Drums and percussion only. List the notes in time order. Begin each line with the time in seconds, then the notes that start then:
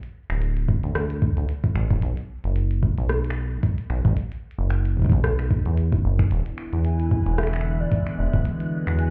0.03 closed hi-hat
0.30 finger snap, closed hi-hat
0.42 closed hi-hat
0.57 closed hi-hat
0.68 kick
0.83 closed hi-hat
0.95 finger snap, cross-stick, closed hi-hat
1.10 closed hi-hat
1.22 kick
1.37 closed hi-hat
1.49 closed hi-hat
1.64 kick, closed hi-hat
1.76 finger snap
1.91 kick, closed hi-hat
2.02 closed hi-hat
2.17 closed hi-hat
2.44 closed hi-hat
2.56 closed hi-hat
2.71 closed hi-hat
2.83 kick
2.98 closed hi-hat
3.09 cross-stick, closed hi-hat
3.25 closed hi-hat
3.30 finger snap
3.63 kick, closed hi-hat
3.78 closed hi-hat
3.90 finger snap
4.05 kick, closed hi-hat
4.17 closed hi-hat
4.32 closed hi-hat
4.51 closed hi-hat
4.70 finger snap, closed hi-hat
4.85 closed hi-hat
4.97 kick
5.00 kick
5.02 kick
5.05 kick
5.10 kick
5.12 kick, closed hi-hat
5.24 cross-stick, closed hi-hat
5.39 finger snap, closed hi-hat
5.51 kick
5.66 closed hi-hat
5.77 closed hi-hat
5.92 kick, closed hi-hat
6.19 finger snap, kick, closed hi-hat
6.31 closed hi-hat
6.46 closed hi-hat
6.58 finger snap
6.73 closed hi-hat
6.85 closed hi-hat
7.00 closed hi-hat
7.11 kick
7.26 closed hi-hat
7.38 finger snap, cross-stick, closed hi-hat
7.43 finger snap
7.47 finger snap
7.53 finger snap, closed hi-hat
7.56 finger snap
7.61 finger snap
7.92 kick, closed hi-hat
8.07 finger snap, closed hi-hat
8.33 kick, closed hi-hat
8.45 closed hi-hat
8.60 closed hi-hat
8.87 finger snap, closed hi-hat
8.99 closed hi-hat